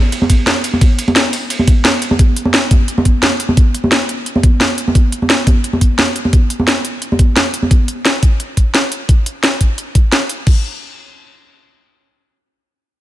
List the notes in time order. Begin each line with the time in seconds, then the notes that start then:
0.12 closed hi-hat, ride
0.22 high conga
0.30 kick, closed hi-hat, ride
0.46 snare, closed hi-hat, ride, high conga
0.64 closed hi-hat, ride
0.73 high conga
0.81 kick, closed hi-hat, ride
0.99 closed hi-hat, ride
1.08 ride, high conga
1.16 snare, closed hi-hat, ride
1.25 ride
1.33 closed hi-hat, open hi-hat
1.50 closed hi-hat, ride
1.59 high conga
1.67 kick, closed hi-hat, ride
1.85 snare, closed hi-hat, ride, high conga
2.02 closed hi-hat, ride
2.11 high conga
2.19 kick, closed hi-hat
2.37 closed hi-hat
2.45 high conga
2.54 snare, closed hi-hat
2.71 kick, closed hi-hat, high conga
2.88 closed hi-hat
2.98 high conga
3.05 kick, closed hi-hat
3.23 snare, closed hi-hat, high conga
3.40 closed hi-hat
3.49 high conga
3.57 kick, closed hi-hat
3.74 closed hi-hat
3.84 high conga
3.92 snare, closed hi-hat
4.09 closed hi-hat
4.26 closed hi-hat
4.36 high conga
4.43 kick, closed hi-hat
4.60 snare, closed hi-hat, high conga
4.78 closed hi-hat
4.88 high conga
4.95 kick, closed hi-hat
5.12 closed hi-hat
5.22 high conga
5.30 snare, closed hi-hat
5.47 kick, closed hi-hat, high conga
5.64 closed hi-hat
5.73 high conga
5.81 kick, closed hi-hat
5.99 snare, closed hi-hat, high conga
6.16 closed hi-hat
6.25 high conga
6.33 kick, closed hi-hat
6.50 closed hi-hat
6.59 high conga
6.67 snare, closed hi-hat
6.85 closed hi-hat
7.02 closed hi-hat
7.12 high conga
7.19 kick, closed hi-hat
7.36 snare, closed hi-hat, high conga
7.54 closed hi-hat
7.62 high conga
7.71 kick, closed hi-hat
7.88 closed hi-hat
8.05 snare, closed hi-hat
8.23 kick, closed hi-hat
8.40 closed hi-hat
8.57 kick, closed hi-hat
8.74 snare, closed hi-hat
8.92 closed hi-hat
9.09 kick, closed hi-hat
9.26 closed hi-hat
9.43 snare, closed hi-hat
9.61 kick, closed hi-hat
9.78 closed hi-hat
9.95 kick, closed hi-hat
10.12 snare, closed hi-hat
10.29 closed hi-hat
10.47 kick, crash